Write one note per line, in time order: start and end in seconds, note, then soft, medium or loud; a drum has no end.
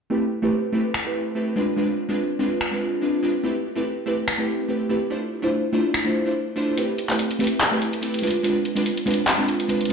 0.10 0.22 A3 medium
0.10 0.22 C4 medium
0.10 0.22 E4 medium
0.10 0.23 G4 medium
0.10 0.23 B4 medium
0.42 0.49 A3 medium
0.42 0.49 C4 medium
0.42 0.49 E4 medium
0.42 0.49 G4 medium
0.42 0.50 B4 medium
0.72 0.80 A3 medium
0.72 0.80 C4 medium
0.72 0.81 E4 medium
0.72 0.81 G4 medium
0.72 0.81 B4 medium
0.94 finger snap medium
1.05 1.33 A3 medium
1.05 1.33 C4 medium
1.05 1.34 E4 medium
1.05 1.34 G4 medium
1.05 1.34 B4 medium
1.35 1.54 A3 medium
1.35 1.54 C4 medium
1.35 1.55 E4 medium
1.35 1.55 G4 medium
1.35 1.55 B4 medium
1.56 1.63 G#3 medium
1.56 1.64 C4 medium
1.56 1.64 D4 medium
1.56 1.64 F4 medium
1.56 1.64 B4 medium
1.76 1.88 G#3 medium
1.76 1.89 C4 medium
1.76 1.89 D4 medium
1.76 1.89 F4 medium
1.76 1.89 B4 medium
2.09 2.15 G#3 medium
2.09 2.15 C4 medium
2.09 2.16 D4 medium
2.09 2.16 F4 medium
2.09 2.16 B4 medium
2.39 2.47 G#3 medium
2.39 2.47 C4 medium
2.39 2.47 D4 medium
2.39 2.47 F4 medium
2.39 2.48 B4 medium
2.61 finger snap medium
2.71 3.00 G#3 medium
2.71 3.00 C4 medium
2.71 3.00 D4 medium
2.71 3.01 F4 medium
2.71 3.01 B4 medium
3.02 3.21 G#3 medium
3.02 3.21 C4 medium
3.02 3.21 D4 medium
3.02 3.21 F4 medium
3.02 3.22 B4 medium
3.22 3.30 G#3 medium
3.22 3.30 C4 medium
3.22 3.31 D4 medium
3.22 3.31 F4 medium
3.22 3.31 B4 medium
3.43 3.55 A3 medium
3.43 3.55 C4 medium
3.43 3.56 E4 medium
3.43 3.56 G4 medium
3.43 3.56 B4 medium
3.76 3.82 A3 medium
3.76 3.82 C4 medium
3.76 3.82 E4 medium
3.76 3.83 G4 medium
3.76 3.83 B4 medium
4.06 4.13 A3 medium
4.06 4.14 C4 medium
4.06 4.14 E4 medium
4.06 4.14 G4 medium
4.06 4.14 B4 medium
4.28 finger snap medium
4.38 4.67 A3 medium
4.38 4.67 C4 medium
4.38 4.67 E4 medium
4.38 4.67 G4 medium
4.38 4.68 B4 medium
4.68 4.87 A3 medium
4.68 4.88 C4 medium
4.68 4.88 E4 medium
4.68 4.88 G4 medium
4.68 4.88 B4 medium
4.89 4.97 A3 medium
4.89 4.97 C4 medium
4.89 4.97 E4 medium
4.89 4.97 G4 medium
4.89 4.98 B4 medium
5.10 5.22 A3 medium
5.10 5.22 D4 medium
5.10 5.22 E4 medium
5.10 5.23 F4 medium
5.10 5.23 C5 medium
5.42 5.49 A3 medium
5.42 5.49 D4 medium
5.42 5.49 E4 medium
5.42 5.49 F4 medium
5.42 5.50 C5 medium
5.72 5.80 A3 medium
5.72 5.80 D4 medium
5.72 5.81 E4 medium
5.72 5.81 F4 medium
5.72 5.81 C5 loud
5.94 finger snap medium
6.04 6.24 A3 medium
6.04 6.24 D4 medium
6.04 6.24 E4 medium
6.04 6.24 F4 medium
6.04 6.25 C5 medium
6.26 6.32 A3 medium
6.26 6.32 D4 medium
6.26 6.32 E4 medium
6.26 6.33 F4 medium
6.26 6.33 C5 medium
6.56 6.75 A3 medium
6.56 6.75 D4 medium
6.56 6.75 E4 medium
6.56 6.76 F4 medium
6.56 6.76 C5 medium
6.77 6.88 A3 medium
6.77 6.89 C4 medium
6.77 6.89 E4 medium
6.77 6.89 G4 medium
6.77 6.89 B4 medium
6.77 closed hi-hat medium
6.98 closed hi-hat medium
7.09 7.15 A3 medium
7.09 7.15 C4 medium
7.09 7.16 E4 medium
7.09 7.16 G4 medium
7.09 7.16 B4 medium
7.09 clap soft
7.09 closed hi-hat medium
7.19 closed hi-hat medium
7.31 closed hi-hat medium
7.39 7.47 A3 medium
7.39 7.47 C4 medium
7.39 7.47 E4 medium
7.39 7.47 G4 medium
7.39 7.48 B4 medium
7.39 closed hi-hat soft
7.44 closed hi-hat medium
7.47 closed hi-hat medium
7.61 finger snap medium
7.61 clap loud
7.61 closed hi-hat medium
7.71 8.00 A3 medium
7.71 8.00 C4 medium
7.71 8.00 E4 medium
7.71 8.01 G4 medium
7.71 8.01 B4 medium
7.82 closed hi-hat medium
7.93 closed hi-hat medium
8.01 8.21 A3 medium
8.01 8.21 C4 medium
8.01 8.21 E4 medium
8.01 8.21 G4 medium
8.01 8.22 B4 medium
8.01 closed hi-hat medium
8.14 closed hi-hat soft
8.19 8.30 G#3 medium
8.19 8.30 C4 medium
8.19 closed hi-hat medium
8.23 8.30 D4 medium
8.23 8.31 F4 medium
8.23 8.31 B4 medium
8.23 closed hi-hat soft
8.27 closed hi-hat medium
8.31 closed hi-hat medium
8.43 8.55 G#3 medium
8.43 8.55 C4 medium
8.43 8.56 D4 medium
8.43 8.56 F4 medium
8.43 8.56 B4 medium
8.43 closed hi-hat medium
8.65 closed hi-hat medium
8.75 8.82 G#3 medium
8.75 8.82 C4 medium
8.75 8.82 D4 medium
8.75 8.83 F4 medium
8.75 8.83 B4 medium
8.75 closed hi-hat medium
8.86 closed hi-hat medium
8.97 closed hi-hat medium
9.06 9.13 G#3 medium
9.06 9.14 C4 medium
9.06 9.14 D4 medium
9.06 9.14 F4 medium
9.06 9.14 B4 medium
9.06 closed hi-hat soft
9.11 closed hi-hat medium
9.14 closed hi-hat medium
9.28 finger snap medium
9.28 clap loud
9.28 closed hi-hat medium
9.38 9.66 G#3 medium
9.38 9.67 C4 medium
9.38 9.67 D4 medium
9.38 9.67 F4 medium
9.38 9.67 B4 medium
9.48 closed hi-hat medium
9.60 closed hi-hat medium
9.68 9.87 G#3 medium
9.68 9.88 C4 medium
9.68 9.88 D4 medium
9.68 9.88 F4 medium
9.68 9.88 B4 medium
9.68 closed hi-hat medium
9.81 closed hi-hat soft
9.85 9.93 G#3 medium
9.85 closed hi-hat medium
9.90 9.93 C4 medium